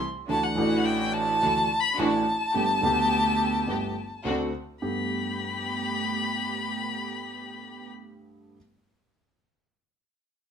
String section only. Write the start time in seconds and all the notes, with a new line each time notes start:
0.29 D4 E4 F#4
0.57 D4 E4 F#4
1.42 D4 E4 F#4
1.98 D4 E4 F#4
2.54 A3 B3 G4
2.83 A3 B3 G4
3.68 A3 B3 G4
4.26 C4 D4 F#4
4.83 A3 B3 G4